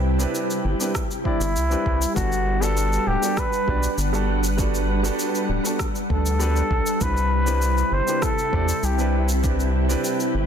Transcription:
Already playing: C2 C3 G3 C4 D4 E4 G4 B4
0.19 C4 D4 E4 G4 B4, cabasa
0.35 cabasa
0.51 cabasa
0.65 G1
0.79 C4 D4 E4 G4 B4, cabasa
0.95 kick, cross-stick, cabasa
1.11 cabasa
1.24 C4 D4 E4 G4 D5, kick
1.40 G1, cabasa
1.56 C2, cabasa
1.69 C4 D4 E4 G4 B4, cabasa
1.86 C2, kick
2.02 cabasa
2.14 G1 G3 B3 D4 F#4 A4 B4 F#5, kick, cabasa
2.32 cabasa
2.61 G3 B3 D4 F#4 A4, cabasa
2.77 cabasa
2.93 cabasa
3.07 D1 G4
3.22 G3 B3 D4 F#4 A4, cabasa
3.37 B4, kick, cross-stick, cabasa
3.53 cabasa
3.68 B1 G3 B3 D4 F#4 D5, kick
3.83 cabasa
3.97 G1, cabasa
4.13 G3 B3 D4 F#4 A4, cabasa
4.44 cabasa
4.57 G3 B3 D4 F#4 A4, kick, cabasa
4.75 cabasa
5.03 G3 B3 D4 F#4 A4, cabasa
5.19 cabasa
5.35 cabasa
5.49 D1
5.63 G3 B3 D4 F#4 A4, cabasa
5.79 kick, cross-stick, cabasa
5.96 cabasa
6.10 D2 A4, kick
6.26 cabasa
6.39 G3 B3 D4 F#4 B4, cabasa
6.56 cabasa
6.70 B1, kick
6.87 cabasa
7.00 C2 C3 C4 D4 E4 G4 B4, kick, cabasa
7.17 cabasa
7.46 C4 D4 E4 G4 B4, cabasa
7.62 cabasa
7.78 cabasa
7.91 G1 C5
8.07 C4 D4 E4 G4 B4, cabasa
8.22 A4, kick, cross-stick, cabasa
8.39 cabasa
8.52 E2 C4 D4 E4 G4 D5, kick
8.69 cabasa
8.83 C2 G4, cabasa
8.97 C4 D4 E4 G4 B4, cabasa
9.29 cabasa
9.43 C4 D4 E4 G4 B4, kick, cabasa
9.60 cabasa
9.88 C4 D4 E4 G4 B4, cabasa
10.05 cabasa
10.20 cabasa
10.35 G1

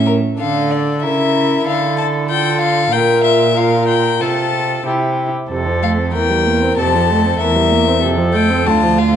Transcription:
Already playing: A2 C#4
0.06 A#4
0.38 D3 D4 A4 F5
0.71 D5
1.02 C#3 E4 A#4 E5
1.66 D3 A4 F5
1.98 A5
2.30 F4 A4 G5
2.61 F5
2.92 A#2 F4 A#4 G5
3.24 E5
3.56 F4 A#4 F5
3.88 G5
4.20 C3 F4 A4 A5
4.85 C3 E4 G4
5.51 F2 C3 A4
5.66 F3
5.82 A3 F5
5.98 C4
6.14 E2 E3 A#4 G5
6.30 G3
6.46 A#3
6.62 C4
6.78 F2 C3 A4 A5
6.95 F3
7.10 A3
7.25 C4
7.40 E2 E3 A#4 E5
7.56 G3
7.71 A#3
7.87 C4
8.03 F2 C3 A4
8.18 F3
8.34 A3 G5
8.50 C4
8.67 D2 D3 F4 A5
8.83 F3
8.98 A3 F5

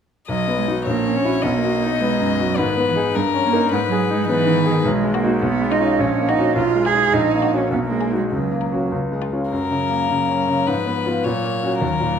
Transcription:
0.28 B1 F#3 D#5
0.48 B3
0.57 G#3
0.68 D#4 F#4
0.86 A#1 A#3 C#5
1.06 C#4
1.15 C#4
1.25 E4 F#4
1.43 B1 B3 D#5
1.57 A#3
1.63 F#4
1.82 D#4
1.86 B3
2.01 G#3 B3
2.20 F#2
2.38 F#4
2.45 F#3
2.57 G#2 D#3 B4
2.77 B3
2.86 E3
2.95 D#4 G#4
3.15 G2 G3 A#4
3.34 C#4
3.43 A#3
3.52 D#4 A#4
3.72 G#2 G#3 B4
3.86 F#3
3.91 G#4
4.10 D#4
4.15 G#3
4.28 E3 B3 B4
4.47 D#3
4.65 G#4
4.71 D#3
4.85 B1 G#3
5.04 G#3
5.14 A#3 F#4
5.23 D#4 F#4
5.42 B1 B3
5.61 G#3
5.71 D#4 F4
5.79 C#4 F4
5.98 A#1 C#4
6.18 A#3
6.28 D#4 F#4
6.37 C#4 F#4
6.56 B1 F4
6.75 G#3
6.85 G#4
6.94 D#4 G#4
7.13 A#1 D#4
7.33 A#3
7.43 F#4
7.52 C#4 F#4
7.57 C#4
7.71 B1 B3
7.87 A#3
7.91 G#3
8.01 G#4
8.11 D#4 F#4
8.17 G#3
8.32 C#2 F#3
8.51 A#3
8.61 A#4
8.72 C#4 F#4
8.91 C#2
9.11 G#3
9.22 F4
9.32 C#4 F4
9.51 F#2 F#3 A#4
9.71 C#3
9.89 A#3
10.09 C#3
10.29 C#4
10.48 C#3
10.66 G#2 F3 B4
10.86 B3
11.06 B3 F4
11.24 A#2 F#3 C#5
11.44 A#3
11.62 C#4 F#4
11.81 D#2 A#4
12.00 A#2

